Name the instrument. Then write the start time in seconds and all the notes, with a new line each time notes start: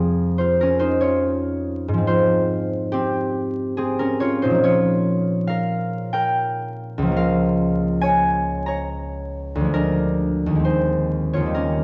harp
Already playing: F2 F3 G#3 C4 F4 G#4 C5
0.38 F4 C5
0.61 C#4 A#4
0.79 D#4 C5
1.01 F4 C#5
1.88 G#2
1.94 F3
1.98 C4
2.07 F4 C5
2.92 C4 G4
3.77 C4 G#4
3.99 C#4 A#4
4.20 F4 C#5
4.42 A#2 D#4 C5
4.50 F3
4.54 A#3
4.64 F4 C#5
5.47 A#4 F5
6.13 A#4 G5
6.98 C#2
7.02 F3
7.07 A#3
7.12 F4
7.17 A#4 F5
8.01 C#5 G#5
8.66 C#5 A#5
9.55 D2
9.60 F3
9.64 G#3
9.74 D4 A#4
10.46 D#2 D#3
10.55 G#3
10.60 C4
10.65 D#4 C5
11.33 D#2 F4 C#5
11.41 D#3
11.46 G3
11.54 C#4 A#4